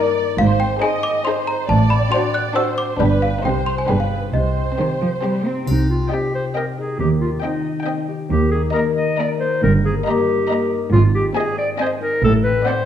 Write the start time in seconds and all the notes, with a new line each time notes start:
Already playing: G2 A#3 D#4 G4 A#4 D5 D#5 G5
0.17 D#4
0.38 G#1 G#2 C5 F5
0.60 C4 G5
0.82 D#4 G#4 C5 D#5 G#5
1.03 C5 D6
1.25 D#4 G#4 C5 C6
1.47 D#4 A#5
1.69 A1 A2 D5 A5
1.90 C4 B5
2.12 D4 F#4 C5 C6
2.34 C5 F#6
2.56 D4 F#4 C5 E6
2.77 D4 D6
3.00 G1 G2 D4 G4 B4 D5
3.22 D4 G4 F5
3.43 C2 C3 D#4 G4 C5 G5
3.66 D#4 G4 C6
3.78 G#5
3.88 G1 G2 D4 G#4 B4 G5
4.00 F5
4.11 D4 G#4
4.33 C2 C3 C5 D#5
4.56 C4
4.78 D#3 C4 G4 C5
5.01 F3 C5
5.23 G3 C4 G4 C5
5.45 C4 D#4
5.67 C2 C3 D#4, triangle
5.89 C4 F4
6.11 C4 G4 D#5 G5
6.34 C5
6.55 C4 G4 A#4 D#5 G5
6.78 D#4 G#4
6.99 D#2 D#3 G4
7.21 D#4 F4
7.43 C4 D#4 C5 D#5 G5
7.64 D#5
7.86 C4 C5 D#5 G5
8.08 G4
8.29 D#2 D#3 G4
8.51 D#4 G#4
8.74 A#3 A#4 D#5 A#5
8.95 D#5
9.19 A#3 A#4 D5 D#5 A#5
9.40 D#4 C5
9.62 G1 G2 A#4
9.84 A#3 G#4
10.06 A#3 G4 A#4 D#5 A#5
10.28 D#4
10.50 A#3 A#4 D#5 A#5
10.71 D#4
10.92 G#1 G#2 F4
11.14 C4 G4
11.35 C4 G#4 D#5 G#5
11.58 C5 D5
11.79 C4 G#4 C5 D#5 G#5
12.01 D#4 A#4
12.23 A1 A2 A4
12.44 C4 B4
12.66 C4 F#4 C5 D5 F#5